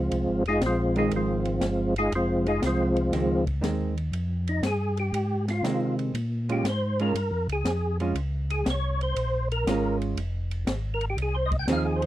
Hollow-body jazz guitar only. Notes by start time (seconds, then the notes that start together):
0.96 D#3 G#3 C4
3.12 D#3 G#3 C4
3.61 D#3 G#3 C4
5.64 D#3 G#3 C4
6.49 G#3 C#4 F4
7.00 G#3 C#4 F4
8.00 G#3 C#4 F4
9.68 G#3 C#4 F4
11.69 F3 C4 D#4 G#4